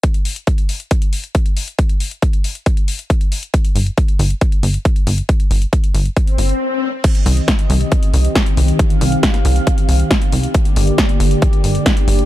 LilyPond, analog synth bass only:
\new Staff \with { instrumentName = "Analog synth bass" } { \clef bass \time 4/4 \key c \minor \tempo 4 = 137 r1 | r1 | r8 g,,8 r8 g,,8 r8 g,,8 r8 g,,8 | r8 g,,8 r8 g,,8 r8 g,,8 r4 |
r8 c,8 r8 c,8 r8 c,8 r8 c,8 | r8 c,8 r8 c,8 r8 c,8 r8 c,8 | r8 g,,8 r8 g,,8 r8 g,,8 r8 g,,8 | }